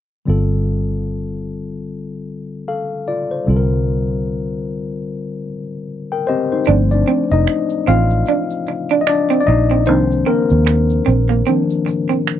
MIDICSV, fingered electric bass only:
0, 0, Header, 1, 2, 480
1, 0, Start_track
1, 0, Tempo, 800000
1, 159, Time_signature, 4, 2, 24, 8
1, 7438, End_track
2, 0, Start_track
2, 0, Title_t, "Fingered electric bass"
2, 0, Program_c, 0, 33
2, 169, Note_on_c, 0, 31, 68
2, 2060, Note_off_c, 0, 31, 0
2, 2088, Note_on_c, 0, 36, 69
2, 3980, Note_off_c, 0, 36, 0
2, 4011, Note_on_c, 0, 31, 106
2, 4215, Note_off_c, 0, 31, 0
2, 4390, Note_on_c, 0, 29, 90
2, 4472, Note_off_c, 0, 29, 0
2, 4728, Note_on_c, 0, 33, 72
2, 4933, Note_off_c, 0, 33, 0
2, 5687, Note_on_c, 0, 34, 68
2, 5930, Note_off_c, 0, 34, 0
2, 5930, Note_on_c, 0, 36, 111
2, 6134, Note_off_c, 0, 36, 0
2, 6309, Note_on_c, 0, 39, 83
2, 6600, Note_off_c, 0, 39, 0
2, 6646, Note_on_c, 0, 34, 86
2, 6851, Note_off_c, 0, 34, 0
2, 7438, End_track
0, 0, End_of_file